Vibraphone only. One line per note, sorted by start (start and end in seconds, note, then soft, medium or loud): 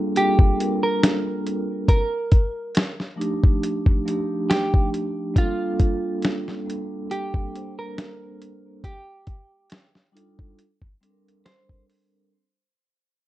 0.00 0.56 G3 medium
0.00 0.57 A#3 medium
0.00 0.58 C4 medium
0.00 0.59 D4 medium
0.00 0.35 F4 medium
0.00 1.90 A4 loud
0.56 1.80 G3 medium
0.56 1.81 A#3 soft
0.56 1.81 C4 medium
0.56 1.81 D4 medium
0.56 1.82 A#4 medium
3.16 3.81 F3 medium
3.16 3.81 A3 medium
3.16 3.81 D4 medium
3.16 3.82 D#4 medium
3.16 3.82 G4 medium
4.05 4.98 F3 medium
4.05 4.98 A3 medium
4.05 4.99 D4 medium
4.05 4.99 D#4 medium
4.05 5.00 G4 medium
5.34 6.27 G3 medium
5.34 6.28 A#3 medium
5.34 6.28 C4 medium
5.34 6.28 D4 medium
5.34 6.29 A4 loud
6.65 7.29 G3 medium
6.65 7.29 A#3 medium
6.65 7.30 C4 medium
6.65 7.30 D4 medium
6.65 7.31 A4 medium
7.53 8.76 G3 medium
7.53 8.77 A#3 medium
7.53 8.77 C4 medium
7.53 8.78 D4 medium
7.53 8.78 C5 medium
10.12 10.57 G3 medium
10.12 10.57 D4 medium
10.12 10.57 D#4 medium
10.12 10.58 F4 medium
10.12 10.58 A4 medium
11.01 11.93 G3 medium
11.01 11.94 C4 medium
11.01 11.94 D4 medium
11.01 11.10 A4 medium
11.10 11.98 A#4 medium